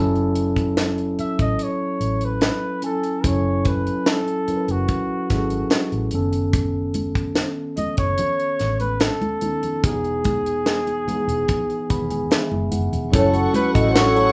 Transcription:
Already playing: F#1 F#3 C#4 E4 A4
0.16 closed hi-hat
0.35 closed hi-hat
0.56 kick, closed hi-hat
0.77 snare, closed hi-hat
0.98 closed hi-hat
1.19 E5, muted fingered electric bass stroke, closed hi-hat
1.39 A1 D#5, kick, closed hi-hat
1.59 closed hi-hat
1.63 C#5
2.00 A1, closed hi-hat
2.21 B4, closed hi-hat
2.41 snare, closed hi-hat
2.82 F#3 C#4 E4 A4 G#5, closed hi-hat
3.03 closed hi-hat
3.24 F#1 F#3 C#4 E4 A4 C#5, kick, closed hi-hat
3.65 B4, kick, closed hi-hat
3.87 closed hi-hat
4.06 A4, snare, closed hi-hat
4.28 closed hi-hat
4.48 F#3 C#4 E4 A#4, muted fingered electric bass stroke, closed hi-hat
4.56 B4
4.68 F#1 F#4, closed hi-hat
4.88 kick, closed hi-hat
5.29 G#1 F#3 C#4 E4 G#4, kick, snare, closed hi-hat
5.38 A4
5.50 closed hi-hat
5.70 snare, closed hi-hat
5.92 A1, closed hi-hat
6.11 F#1 D#3 B3 C#4, closed hi-hat
6.15 A4
6.33 closed hi-hat
6.53 kick, closed hi-hat, muted conga
6.94 closed hi-hat, high conga
7.15 kick, closed hi-hat
7.35 snare, closed hi-hat, muted conga
7.77 D#5, muted fingered electric bass stroke, closed hi-hat, high conga, low conga
7.97 F#1 C#5, kick, closed hi-hat
8.18 closed hi-hat, muted conga, low conga
8.40 closed hi-hat
8.59 A1, snare, closed hi-hat
8.80 B4, closed hi-hat, high conga
9.00 A4, snare, closed hi-hat, muted conga
9.21 closed hi-hat, muted conga, high conga
9.41 D#3 B3 C#4 D#4, closed hi-hat, high conga
9.63 closed hi-hat, low conga
9.83 E1 E3 B3 D#4 G4 G#4, kick, closed hi-hat
9.91 G#4
10.04 closed hi-hat
10.24 kick, closed hi-hat, high conga
10.46 closed hi-hat
10.66 snare, closed hi-hat, muted conga
10.87 closed hi-hat, muted conga
11.07 E3 B3 D#4 G#4, muted fingered electric bass stroke, closed hi-hat, high conga, low conga
11.27 E1, closed hi-hat
11.48 kick, closed hi-hat, low conga
11.70 closed hi-hat
11.89 E1 D#3 E3 B3 G#4 B5, kick, closed hi-hat
12.10 G#5, closed hi-hat, high conga
12.31 E5, snare, closed hi-hat, muted conga
12.51 F#1, high conga
12.71 F#1 F#5, closed hi-hat, high conga
12.93 E1, closed hi-hat, low conga
13.11 F#1 F#3 A3 C#4 E4 F#4 A4 C#5 F#5 C#6, kick, closed hi-hat, muted conga
13.34 muted clean electric guitar stroke, closed hi-hat, muted conga
13.54 B4, muted clean electric guitar stroke, closed hi-hat, high conga
13.75 A1 E4 A4 D#5, kick, closed hi-hat
13.90 C5
13.96 C#5, muted clean electric guitar stroke, snare, closed hi-hat, muted conga
14.16 E4 A4 C#5, closed hi-hat, muted conga

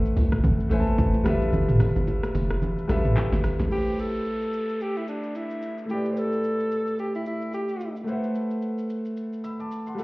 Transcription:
Already playing: A1 A3 A4 B4 C5 E5 F#5
0.05 shaker
0.17 C2, open hi-hat, low bongo, shaker
0.32 kick, cross-stick, high bongo, shaker
0.44 kick, low conga, shaker
0.60 shaker
0.69 A1 A3 A4 B4 C5 E5 G#5, open hi-hat, shaker
0.80 A5
0.87 low bongo, shaker
0.98 A1, kick, high bongo, shaker
1.14 high bongo, shaker
1.24 G1 G3 F4 A4 B4 E5, cross-stick, open hi-hat, shaker
1.41 A1, shaker
1.53 G1, low conga, shaker
1.69 mid tom, shaker
1.80 cross-stick, open hi-hat, low bongo, low conga, shaker
1.96 G1, low bongo, shaker
2.07 high bongo, shaker
2.23 cross-stick, shaker
2.35 F1, open hi-hat, low bongo, shaker
2.50 cross-stick, high bongo, shaker
2.62 low conga, shaker
2.78 shaker
2.88 A1 G3 F4 A4 B4 E5, cross-stick, snare, open hi-hat, shaker
3.05 mid tom, low bongo, shaker
3.17 clap, high bongo, shaker
3.32 G1, snare, high bongo, shaker
3.44 G1, cross-stick, open hi-hat, shaker
3.60 A1, snare, shaker
3.68 A3 E4 G4, downlifter, shaker
3.72 G4 B4 C5
3.87 shaker
3.98 A4, shaker
4.14 shaker
4.25 shaker
4.42 shaker
4.53 shaker
4.69 shaker
4.80 G4, shaker
4.96 E4, shaker
5.08 D4, shaker
5.23 shaker
5.35 E4, shaker
5.50 shaker
5.62 shaker
5.78 shaker
5.86 A3 E4 G4, shaker
5.90 G4 B4 D5
6.05 shaker
6.12 C5
6.17 A4, shaker
6.32 shaker
6.44 shaker
6.60 shaker
6.71 shaker
6.87 shaker
6.99 G4, shaker
7.15 E4, shaker
7.26 E4, shaker
7.41 shaker
7.53 G4, shaker
7.68 shaker
7.80 shaker
7.96 shaker
8.04 A3 A4 B4, shaker
8.08 C5 E5 F#5
8.23 shaker
8.35 shaker
8.51 shaker
8.62 shaker
8.78 shaker
8.90 shaker
9.05 shaker
9.17 shaker
9.33 shaker
9.44 B5 E6, shaker
9.60 A5 D6, shaker
9.71 shaker
9.87 F#5 C6, shaker
9.95 G3 F4 A4, shaker
10.00 B4

